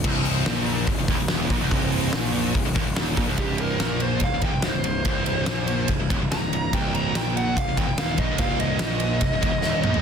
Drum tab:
CC |x---------------|----------------|----------------|----------------|
RD |----------------|----------------|x-x-x-x-x-x-x-x-|x-x-x-x-x-x-x-x-|
HH |--o---o-o-o-o-o-|o-o-o-o-o-o---o-|----------------|----------------|
SD |----o-------o---|----o-------o---|----o-------o---|----o-------o---|
T2 |----------------|----------------|----------------|----------------|
FT |----------------|----------------|----------------|----------------|
BD |o-------o-o---o-|o-------o-o---o-|o-------o-o-----|o-------o-o-----|

CC |----------------|----------------|
RD |x-x-x-x-x-x-x-x-|x-x-x-x-x-x-----|
HH |----------------|----------------|
SD |----o-------o---|----o-------o---|
T2 |----------------|--------------o-|
FT |----------------|---------------o|
BD |o-------o-o---o-|o-------o-o-----|